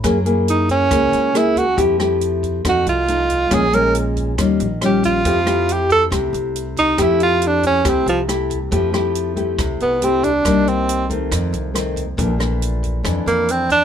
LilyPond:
<<
  \new Staff \with { instrumentName = "Tenor saxophone" } { \time 4/4 \key f \major \tempo 4 = 138 r4 ees'8 des'4. fes'8 ges'8 | r2 ges'8 f'4. | aes'8 bes'8 r2 g'8 f'8~ | f'4 g'8 a'8 r4. ees'8 |
e'8 f'8 d'8 des'8 c'8 f8 r4 | r2 r8 b8 c'8 d'8~ | d'8 c'4 r2 r8 | r2 r8 bes8 c'8 d'8 | }
  \new Staff \with { instrumentName = "Nylon-string guitar" } { \time 4/4 \key f \major << { <bes fes' aes'>8 <bes fes' aes'>4. <bes fes' aes'>4 <bes fes' aes'>8 r8 | <a e' g'>8 <a e' g'>4. <a ees' ges'>4 <a ees'>4 | <aes des' f'>8 <aes des' f'>4. <g des' f'>8 r8 <g des' f'>4 | <a e' g'>8 <a e' g'>4. <a e' g'>2 |
<a e' g'>2 <a e' g'>4 <a e' g'>8 r8 | <a e' g'>8 <a e' g'>4 <a e' g'>4. <a e' g'>8 r8 | <g bes ees'>4. <ees a c'>4. <ees a c'>8 r8 | <e a d'>8 <e a d'>4. <e a d'>2 | } \\ { ges2 des2 | f2 f2 | bes,2 ees2 | f2 c2 |
f2 c2 | f2 c2 | c2 f,2 | bes,2 f,2 | } >> }
  \new Staff \with { instrumentName = "Upright bass" } { \clef bass \time 4/4 \key f \major ges,2 des,8 des,4. | f,2 f,8 c,4. | bes,,2 ees,8 bes,,4. | f,2 c,8 c,4. |
f,2 c,8 c,4. | f,2 c,8 c,4. | c,2 f,8 c,4. | bes,,2 f,8 f,4. | }
  \new DrumStaff \with { instrumentName = "Drums" } \drummode { \time 4/4 <hh bd ss>8 hh8 hh8 <hh bd>8 <hh bd ss>8 hh8 <hh ss>8 <hh bd>8 | <hh bd>8 <hh ss>8 hh8 <hh bd>8 <hh bd ss>8 hh8 hh8 <hh bd>8 | <hh bd ss>8 hh8 hh8 <hh bd>8 <hh bd ss>8 hh8 <hh ss>8 <hh bd>8 | <hh bd>8 <hh ss>8 hh8 <hh bd>8 <hh bd ss>8 hh8 hh8 <hh bd>8 |
<hh bd ss>8 hh8 hh8 <hh bd>8 <hh bd ss>8 hh8 <hh ss>8 <hh bd>8 | <hh bd>8 <hh ss>8 hh8 <hh bd>8 <hh bd ss>8 hh8 hh8 <hh bd>8 | <hh bd ss>8 hh8 hh8 <hh bd>8 <hh bd ss>8 hh8 <hh ss>8 <hh bd>8 | <hh bd>8 <hh ss>8 hh8 <hh bd>8 <hh bd ss>8 hh8 hh8 <hh bd>8 | }
>>